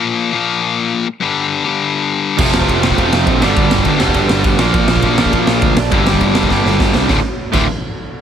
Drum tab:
CC |----------------|----------------|x---------------|----------------|
RD |----------------|----------------|----x---x---x---|x---x---x---x---|
SD |----------------|----------------|--o---o---o---o-|--o---o---o---o-|
BD |----------------|----------------|o--oo--oo---o---|o--oo--oo---o---|

CC |----------------|----------------|------x---------|
RD |x---x---x---x---|x---x-----------|----------------|
SD |--o---o---o---o-|--o---o-o-o-o-o-|o---------------|
BD |o--oo--oo---o---|o--oo--oo---o---|o-----o---------|